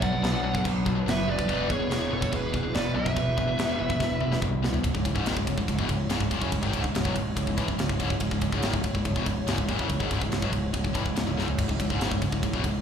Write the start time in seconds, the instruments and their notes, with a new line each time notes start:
Already playing: analog synth pad F#3 D4 B4
0.01 picked electric bass B1, distorted electric guitar B2 F#3, lead electric guitar D5 F#5, kick
0.12 distorted electric guitar B2 F#3
0.22 picked electric bass B1, distorted electric guitar B2 F#3, snare, china
0.33 distorted electric guitar B2 F#3
0.43 picked electric bass B1, distorted electric guitar B2 F#3
0.54 distorted electric guitar B2 F#3, kick
0.64 picked electric bass B1, distorted electric guitar B2 F#3, kick, china
0.85 picked electric bass B1, distorted electric guitar B2 F#3, kick
0.95 distorted electric guitar B2 F#3
1.06 picked electric bass F#1, distorted electric guitar B2 F#3, lead electric guitar B4 E5, snare, china
1.28 distorted electric guitar B2 F#3, lead electric guitar B4 D5
1.38 distorted electric guitar B2 F#3, kick
1.48 picked electric bass E1, distorted electric guitar E2 B2 E3, analog synth pad G#3 E4, kick, china
1.69 picked electric bass E1, distorted electric guitar E2 B2, lead electric guitar G#4 C#5, kick
1.80 distorted electric guitar E2 B2
1.90 picked electric bass E1, distorted electric guitar E2 B2, snare, china
2.01 distorted electric guitar E2 B2
2.10 picked electric bass E1, distorted electric guitar E2 B2, lead electric guitar A4 C#5
2.21 distorted electric guitar E2 B2, kick
2.32 picked electric bass E1, distorted electric guitar E2 B2, lead electric guitar G#4 B4, kick, china
2.53 picked electric bass E1, distorted electric guitar E2 B2, kick
2.63 distorted electric guitar E2 B2
2.74 picked electric bass E1, distorted electric guitar E2 B2, lead electric guitar B4 D5, snare, china
2.95 picked electric bass B1, distorted electric guitar E2 B2, lead electric guitar B4 E5
3.05 distorted electric guitar E2 B2, kick
3.16 picked electric bass E1, distorted electric guitar E2 B2, kick, china
3.37 picked electric bass E1, distorted electric guitar E2 B2, kick
3.48 distorted electric guitar E2 B2
3.58 picked electric bass E1, distorted electric guitar E2 B2, snare, china
3.69 distorted electric guitar E2 B2
3.79 picked electric bass E1, distorted electric guitar E2 B2
3.90 distorted electric guitar E2 B2, kick
4.00 picked electric bass E1, distorted electric guitar E2 B2, kick, snare
4.21 picked electric bass E1, distorted electric guitar E2 B2, mid tom
4.32 distorted electric guitar E2 B2, snare
4.42 picked electric bass C2, distorted electric guitar E2 B2, kick
4.63 distorted electric guitar E2 B2, snare
4.73 distorted electric guitar E2 B2, floor tom
4.83 picked electric bass C#1, distorted electric guitar C#2 G#2, analog synth pad G#3 E4 C#5, kick, ride
4.94 picked electric bass C#1, distorted electric guitar C#2 G#2, kick
5.05 picked electric bass C#1, distorted electric guitar C#2 G#2, kick, ride
5.15 picked electric bass C#1, distorted electric guitar C#2 G#2, kick
5.26 picked electric bass G#1, distorted electric guitar G#2 D#3, snare, ride
5.36 picked electric bass C#1, distorted electric guitar C#2 G#2, kick
5.47 picked electric bass C#1, distorted electric guitar C#2 G#2, kick, ride
5.58 picked electric bass C#1, distorted electric guitar C#2 G#2, kick
5.68 picked electric bass C#1, distorted electric guitar C#2 G#2, kick, ride
5.79 picked electric bass E1, distorted electric guitar E2 B2, kick
5.89 picked electric bass C#1, distorted electric guitar C#2 G#2, kick, ride
6.09 picked electric bass C#1, distorted electric guitar C#2 G#2, snare, ride
6.20 picked electric bass C#1, distorted electric guitar C#2 G#2, kick
6.31 picked electric bass D#1, distorted electric guitar D#2 A#2, kick, ride
6.42 picked electric bass F#1, distorted electric guitar F#2 C#3, kick
6.52 picked electric bass C#1, distorted electric guitar C#2 G#2, kick, ride
6.62 picked electric bass G#1, distorted electric guitar G#2 D#3, kick
6.73 picked electric bass C#1, distorted electric guitar C#2 G#2, kick, ride
6.83 picked electric bass C#1, distorted electric guitar C#2 G#2, kick
6.94 picked electric bass C#1, distorted electric guitar C#2 G#2, snare, ride
7.04 picked electric bass B1, distorted electric guitar B2 F#3, kick
7.15 picked electric bass C#1, distorted electric guitar C#2 G#2, kick, ride
7.36 picked electric bass C#1, distorted electric guitar C#2 G#2, kick, ride
7.47 picked electric bass C#1, distorted electric guitar C#2 G#2, kick
7.57 picked electric bass A1, distorted electric guitar A2 E3, kick, ride
7.68 picked electric bass C#1, distorted electric guitar C#2 G#2, kick
7.78 picked electric bass C#1, distorted electric guitar C#2 G#2, snare, ride
7.89 picked electric bass C#1, distorted electric guitar C#2 G#2, kick
8.00 picked electric bass C#1, distorted electric guitar C#2 G#2, kick, ride
8.10 picked electric bass C#1, distorted electric guitar C#2 G#2, kick
8.20 picked electric bass C#1, distorted electric guitar C#2 G#2, kick, ride
8.31 picked electric bass C#1, distorted electric guitar C#2 G#2, kick
8.41 picked electric bass C#1, distorted electric guitar C#2 G#2, kick, ride
8.52 picked electric bass C#1, distorted electric guitar C#2 G#2, kick
8.62 picked electric bass G#1, distorted electric guitar G#2 D#3, snare, ride
8.73 picked electric bass C#1, distorted electric guitar C#2 G#2, kick
8.84 picked electric bass C#1, distorted electric guitar C#2 G#2, kick, ride
8.95 picked electric bass C#1, distorted electric guitar C#2 G#2, kick
9.05 picked electric bass C#1, distorted electric guitar C#2 G#2, kick, ride
9.16 picked electric bass E1, distorted electric guitar E2 B2, kick
9.26 picked electric bass C#1, distorted electric guitar C#2 G#2, kick, ride
9.47 picked electric bass C#1, distorted electric guitar C#2 G#2, snare, ride
9.58 picked electric bass C#1, distorted electric guitar C#2 G#2, kick
9.68 picked electric bass D#1, distorted electric guitar D#2 A#2, kick, ride
9.79 picked electric bass F#1, distorted electric guitar F#2 C#3, kick
9.89 picked electric bass C#1, distorted electric guitar C#2 G#2, kick, ride
10.00 picked electric bass G#1, distorted electric guitar G#2 D#3, kick
10.11 picked electric bass C#1, distorted electric guitar C#2 G#2, kick, ride
10.21 picked electric bass C#1, distorted electric guitar C#2 G#2, kick
10.31 picked electric bass C#1, distorted electric guitar C#2 G#2, snare, ride
10.42 picked electric bass B1, distorted electric guitar B2 F#3, kick
10.52 picked electric bass C#1, distorted electric guitar C#2 G#2, kick, ride
10.73 picked electric bass C#1, distorted electric guitar C#2 G#2, kick, ride
10.84 picked electric bass C#1, distorted electric guitar C#2 G#2, kick
10.94 picked electric bass A1, distorted electric guitar A2 E3, kick, ride
11.05 picked electric bass C#1, distorted electric guitar C#2 G#2, kick
11.15 picked electric bass C#1, distorted electric guitar C#2 G#2, snare, ride
11.26 picked electric bass C#1, distorted electric guitar C#2 G#2
11.37 picked electric bass C#1, distorted electric guitar C#2 G#2, snare
11.47 picked electric bass C#1, distorted electric guitar C#2 G#2, floor tom
11.58 picked electric bass C#1, distorted electric guitar C#2 G#2, kick, crash
11.68 picked electric bass C#1, distorted electric guitar C#2 G#2, kick
11.80 picked electric bass C#1, distorted electric guitar C#2 G#2, kick, ride
11.90 picked electric bass C#1, distorted electric guitar C#2 G#2, kick
12.00 picked electric bass G#1, distorted electric guitar G#2 D#3, snare, ride
12.11 picked electric bass C#1, distorted electric guitar C#2 G#2, kick
12.22 picked electric bass C#1, distorted electric guitar C#2 G#2, kick, ride
12.32 picked electric bass C#1, distorted electric guitar C#2 G#2, kick
12.43 picked electric bass C#1, distorted electric guitar C#2 G#2, kick, ride
12.53 picked electric bass E1, distorted electric guitar E2 B2, kick
12.64 picked electric bass C#1, distorted electric guitar C#2 G#2, kick, ride